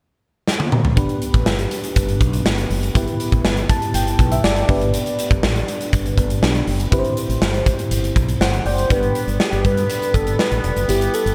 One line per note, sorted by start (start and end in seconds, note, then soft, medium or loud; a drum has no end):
0.48 snare medium
0.60 high tom medium
0.72 mid tom medium
0.85 floor tom medium
0.96 1.06 G1 loud
0.96 2.91 B3 medium
0.96 2.91 D4 medium
0.96 2.92 G4 medium
0.96 2.92 B4 medium
0.96 kick loud
0.96 closed hi-hat medium
1.09 closed hi-hat soft
1.22 closed hi-hat medium
1.34 1.43 A1 medium
1.34 kick medium
1.34 closed hi-hat soft
1.46 1.65 G1 medium
1.46 snare loud
1.59 closed hi-hat soft
1.71 closed hi-hat medium
1.84 closed hi-hat medium
1.96 2.15 G1 medium
1.96 kick medium
1.96 closed hi-hat medium
2.09 closed hi-hat soft
2.21 2.39 B1 medium
2.21 kick medium
2.21 closed hi-hat medium
2.33 closed hi-hat medium
2.46 2.64 G1 medium
2.46 snare loud
2.58 closed hi-hat soft
2.70 2.89 F#1 medium
2.70 open hi-hat medium
2.83 closed hi-hat medium
2.94 3.04 G1 loud
2.94 4.65 B3 medium
2.94 4.65 E4 medium
2.94 4.66 G4 medium
2.94 4.66 B4 medium
2.94 kick loud
2.94 closed hi-hat medium
3.07 closed hi-hat soft
3.20 closed hi-hat medium
3.32 3.42 A1 medium
3.32 kick medium
3.32 closed hi-hat soft
3.44 3.63 G1 medium
3.44 snare loud
3.57 closed hi-hat soft
3.69 3.93 A5 medium
3.69 kick medium
3.69 closed hi-hat medium
3.82 closed hi-hat medium
3.94 4.13 G1 medium
3.94 4.29 G5 medium
3.94 closed hi-hat medium
4.07 closed hi-hat soft
4.19 4.38 B1 medium
4.19 kick medium
4.19 closed hi-hat medium
4.32 4.43 E5 medium
4.32 closed hi-hat medium
4.44 4.63 G1 medium
4.44 4.90 D5 medium
4.44 snare loud
4.56 closed hi-hat soft
4.68 4.97 G1 medium
4.68 6.38 B3 medium
4.68 6.39 D4 medium
4.68 6.39 G4 medium
4.68 6.40 B4 medium
4.68 kick loud
4.68 open hi-hat medium
4.81 closed hi-hat medium
4.94 closed hi-hat medium
5.06 closed hi-hat soft
5.19 closed hi-hat medium
5.31 5.40 G1 medium
5.31 kick medium
5.31 closed hi-hat soft
5.43 5.62 A1 medium
5.43 snare loud
5.56 closed hi-hat soft
5.68 closed hi-hat medium
5.81 closed hi-hat medium
5.93 6.12 G1 medium
5.93 kick medium
5.93 closed hi-hat medium
6.06 closed hi-hat soft
6.18 6.36 G1 medium
6.18 kick medium
6.18 closed hi-hat medium
6.30 closed hi-hat medium
6.42 6.61 B1 medium
6.42 6.92 B3 medium
6.42 6.92 D4 soft
6.42 6.91 G4 soft
6.42 6.92 B4 medium
6.42 snare medium
6.55 closed hi-hat soft
6.67 6.86 F#1 medium
6.67 open hi-hat medium
6.80 closed hi-hat medium
6.91 7.01 G1 loud
6.91 8.61 C4 medium
6.91 8.62 E4 medium
6.91 8.62 G4 medium
6.91 6.99 B4 medium
6.91 kick loud
6.91 closed hi-hat medium
6.99 8.40 C5 medium
7.05 closed hi-hat soft
7.17 closed hi-hat medium
7.29 7.38 A1 medium
7.29 closed hi-hat soft
7.41 7.60 G1 medium
7.41 snare loud
7.54 closed hi-hat soft
7.66 kick medium
7.66 closed hi-hat medium
7.79 closed hi-hat medium
7.91 8.10 G1 medium
7.91 closed hi-hat medium
8.04 closed hi-hat soft
8.16 8.35 B1 medium
8.16 kick medium
8.16 closed hi-hat medium
8.29 closed hi-hat medium
8.40 8.59 G1 medium
8.40 8.65 C5 medium
8.40 8.64 F#5 medium
8.40 snare loud
8.53 closed hi-hat soft
8.65 8.84 F#1 medium
8.65 8.92 C5 medium
8.65 9.13 D5 medium
8.65 9.13 G5 medium
8.65 open hi-hat medium
8.78 closed hi-hat medium
8.89 9.09 G1 medium
8.89 10.87 D3 medium
8.89 11.35 G3 medium
8.89 10.84 B3 medium
8.89 11.35 B3 medium
8.89 10.85 D4 soft
8.89 10.85 G4 soft
8.89 9.42 B4 medium
8.89 10.85 B4 medium
8.89 kick loud
8.89 closed hi-hat medium
9.03 closed hi-hat soft
9.15 closed hi-hat medium
9.27 9.37 G1 medium
9.27 closed hi-hat soft
9.40 9.67 G4 medium
9.40 snare medium
9.52 9.62 G1 medium
9.52 closed hi-hat soft
9.65 9.83 G2 medium
9.65 9.89 B4 medium
9.65 kick medium
9.65 closed hi-hat medium
9.77 closed hi-hat soft
9.90 10.15 B4 medium
9.90 closed hi-hat medium
10.02 closed hi-hat soft
10.14 10.33 G1 medium
10.14 10.41 A4 medium
10.14 kick medium
10.14 closed hi-hat medium
10.27 closed hi-hat medium
10.39 10.89 B4 loud
10.39 snare medium
10.52 10.61 A1 medium
10.52 closed hi-hat soft
10.64 10.73 E1 medium
10.64 closed hi-hat medium
10.76 10.86 F#1 medium
10.76 closed hi-hat soft
10.88 11.07 G1 medium
10.88 11.35 E3 medium
10.88 11.35 B3 medium
10.88 11.35 E4 soft
10.88 11.35 G4 medium
10.88 11.15 G4 medium
10.88 11.35 B4 medium
10.88 closed hi-hat medium
11.01 closed hi-hat soft
11.14 11.35 A4 medium
11.14 closed hi-hat medium
11.26 11.35 G1 medium
11.26 closed hi-hat soft